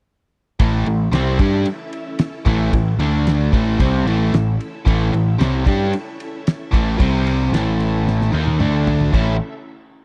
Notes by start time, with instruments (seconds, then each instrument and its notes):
0.59 picked electric bass A1, overdriven electric guitar A2 E3 A3, string machine C#4 E4 A4 E5, kick, ride
0.86 picked electric bass A1, overdriven electric guitar A2 E3, ride
1.12 picked electric bass C2, overdriven electric guitar C3 G3 C4, snare, ride
1.39 picked electric bass G2, overdriven electric guitar G3 D4 G4, kick, ride
1.65 ride
1.93 ride
2.19 snare, ride
2.46 picked electric bass A1, overdriven electric guitar A2 E3 A3, kick, ride
2.72 picked electric bass A1, overdriven electric guitar A2 E3, kick, ride
2.99 picked electric bass D2, overdriven electric guitar D3 A3 D4, string machine D4 A4 D5, ride
3.27 snare, ride
3.51 picked electric bass A1, overdriven electric guitar A2 E3 A3, string machine C#4 E4 A4 E5, kick, ride
3.79 picked electric bass C2, overdriven electric guitar C3 G3 C4, kick, ride
4.05 picked electric bass A1, overdriven electric guitar A2 E3 A3, ride
4.33 picked electric bass A1, overdriven electric guitar A2 E3, snare, ride
4.60 ride
4.86 picked electric bass A1, overdriven electric guitar A2 E3 A3, kick, ride
5.12 picked electric bass A1, overdriven electric guitar A2 E3, ride
5.40 picked electric bass C2, overdriven electric guitar C3 G3 C4, snare, ride
5.66 picked electric bass G2, overdriven electric guitar G3 D4 G4, kick, ride
5.93 ride
6.20 ride
6.47 snare, ride
6.73 picked electric bass A1, overdriven electric guitar A2 E3 A3, kick, ride
6.99 picked electric bass C2, overdriven electric guitar C3 G3 C4, string machine C4 G4 C5, kick, ride
7.27 ride
7.52 picked electric bass A1, overdriven electric guitar A2 E3 A3, string machine C#4 E4 A4 E5, snare, ride
7.80 ride
8.08 snare
8.21 snare
8.34 picked electric bass D#2, overdriven electric guitar D#3 A#3 D#4
8.47 high tom
8.60 picked electric bass D2, overdriven electric guitar D3 A3 D4, string machine D4 A4 D5, mid tom
8.87 floor tom
9.01 floor tom
9.13 picked electric bass A1, overdriven electric guitar A2 E3 A3 C#4 E4, string machine C#4 E4 A4 E5, kick, crash